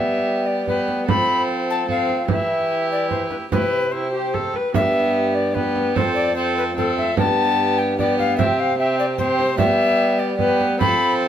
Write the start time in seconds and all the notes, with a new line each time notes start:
Already playing: G3 B3 G4 E5
0.47 D5
0.67 B3 G4 B4, frame drum
0.88 frame drum
1.08 F3 C4 A4 B5, frame drum
1.70 A5
1.88 C4 A4 F5, frame drum
2.09 frame drum
2.28 E3 E4 G4 E5, frame drum
2.91 D5
3.10 C5, frame drum
3.30 B4, frame drum
3.51 C3 E4 G4 B4, frame drum
3.92 E4 G4 C5
4.13 G4
4.34 A4, frame drum
4.54 B4, frame drum
4.73 G2 B3 G4 E5, frame drum
5.35 D5
5.54 B3 G4 B4, frame drum
5.76 frame drum
5.95 F2 C4 A4 C5, frame drum
6.15 D5
6.36 C4 A4 C5
6.58 B4
6.76 C4 A4, frame drum
6.98 E5, frame drum
7.17 G2 B3 G4 A5, frame drum
7.78 G5
7.98 B3 G4 D5, frame drum
8.19 F5, frame drum
8.37 C3 C4 G4 E5, frame drum
8.60 F5
8.77 C4 G4 E5
8.99 D5
9.18 C4 G4 C5, frame drum
9.39 frame drum
9.58 G3 B3 G4 E5, frame drum
10.19 D5
10.38 B3 G4 B4, frame drum
10.61 frame drum
10.79 F3 C4 A4 B5, frame drum